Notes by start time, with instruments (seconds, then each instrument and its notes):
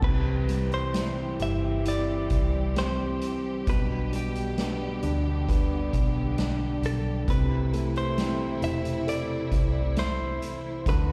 0.02 fingered electric bass C2, grand piano C3, string section E3 G3 C4 G4, french horn section E4, clean electric guitar B4, kick, crash
0.48 grand piano G3, closed hi-hat
0.72 clean electric guitar C5, closed hi-hat
0.93 grand piano E4, snare, closed hi-hat
1.39 fingered electric bass G1, grand piano G4, clean electric guitar E5, closed hi-hat
1.85 grand piano E4, clean electric guitar D5, closed hi-hat
2.30 fingered electric bass C2, kick, closed hi-hat
2.76 french horn section C4, grand piano G4, clean electric guitar C5, snare, closed hi-hat
3.21 closed hi-hat
3.67 fingered electric bass B1, grand piano B2, string section D3 B3, french horn section D4, clean electric guitar B4, kick, closed hi-hat
4.12 grand piano G3, clean electric guitar G4, closed hi-hat
4.35 closed hi-hat
4.51 french horn section C#4
4.58 grand piano B3, french horn section D4, snare, closed hi-hat
5.03 fingered electric bass D2, grand piano D4, closed hi-hat
5.49 grand piano B3, kick, closed hi-hat
5.93 fingered electric bass B1, kick, closed hi-hat
6.38 grand piano D4, snare, closed hi-hat
6.82 fingered electric bass B1, clean electric guitar A4, closed hi-hat
7.28 fingered electric bass C2, grand piano C3, string section C3 E3 A3 E4, french horn section E4, clean electric guitar B4, kick, closed hi-hat
7.73 grand piano A3, closed hi-hat
7.96 clean electric guitar C5, closed hi-hat
8.18 grand piano C4, snare, closed hi-hat
8.62 fingered electric bass E1, grand piano E4, clean electric guitar E5, closed hi-hat
8.85 closed hi-hat
9.07 grand piano A4, clean electric guitar D5, closed hi-hat
9.51 fingered electric bass C2, kick, closed hi-hat
9.96 grand piano E4, clean electric guitar C5, snare, closed hi-hat
10.42 closed hi-hat
10.85 fingered electric bass D2, string section D3 F#3 A3 F#4, grand piano D3, french horn section F#4, clean electric guitar B4, kick, closed hi-hat